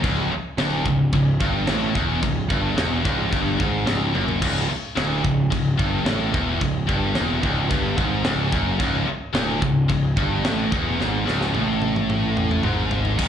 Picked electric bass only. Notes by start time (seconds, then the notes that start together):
0.04 C#1
0.31 muted picked electric bass stroke
0.58 D1
0.86 C#1
1.13 C#1
1.41 G1
1.68 A1
1.95 E1
2.23 C#1
2.50 G1
2.77 E1
3.05 C#1
3.33 G1
3.60 G#1
3.87 C#1
4.15 F#1
4.42 C#1
4.70 muted picked electric bass stroke
4.97 D1
5.24 C#1
5.52 C#1
5.79 G1
6.08 A1
6.34 E1
6.61 C#1
6.89 G1
7.17 E1
7.43 C#1
7.71 G1
7.98 G#1
8.25 C#1
8.53 F#1
8.80 C#1
9.07 muted picked electric bass stroke
9.34 D1
9.62 C#1
9.90 C#1
10.17 G1
10.44 A1
10.72 E1
10.99 G#1
11.27 C#1
11.54 A1
12.63 G#1
13.19 C#1